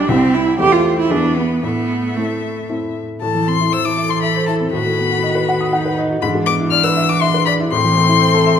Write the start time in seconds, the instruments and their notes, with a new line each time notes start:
Already playing: grand piano B1 G3 D4 G4, cello D4
0.08 grand piano C2 C4 E4 G4, viola G3, cello C4, violin E5
0.35 cello E4
0.59 grand piano E2 C4 E4 A4, viola A3, cello G4, violin C5
0.72 cello F4
0.99 cello E4
1.10 grand piano E2 B3 E4 G#4, viola B3, cello D4, violin B4
1.37 cello B3
1.63 grand piano A2, viola A3, cello B3, violin E5
2.16 cello A3, grand piano C4 E4 A4
2.69 grand piano C4 E4 A4
3.22 grand piano A2, cello E3, viola A4, violin A5
3.35 grand piano E3
3.47 grand piano C4, violin C6
3.60 grand piano E4
3.72 cello E3, viola A4, grand piano C5, violin E6
3.85 grand piano E4, violin D6
3.97 grand piano E5
4.09 grand piano C6, violin C6
4.22 grand piano E5, violin B5
4.35 grand piano C5
4.47 grand piano E4, violin A5
4.60 grand piano C4
4.72 grand piano A2, cello D#3, viola F#4, violin B5
4.86 grand piano A3
4.98 grand piano B3
5.11 grand piano F#4
5.24 grand piano D#5
5.35 grand piano B4
5.49 grand piano F#5
5.61 grand piano D#6
5.73 viola D#4, grand piano F#5
5.85 grand piano B4
5.98 grand piano D#5
6.10 grand piano F#4
6.22 grand piano G#2, cello E3, viola D4, violin B5
6.35 grand piano G#3
6.46 grand piano B3, violin D6
6.59 grand piano E4
6.71 grand piano D5, violin F6
6.84 grand piano B4, violin E6
6.96 grand piano E5
7.09 violin D6, grand piano D6
7.21 grand piano E5, violin C6
7.34 grand piano B4
7.46 grand piano D5, violin B5
7.60 grand piano E4
7.71 grand piano A2, cello E3, viola C4, violin C6
7.84 grand piano E3
7.96 grand piano A3
8.08 grand piano E4
8.21 grand piano C5
8.34 grand piano A4
8.46 grand piano E5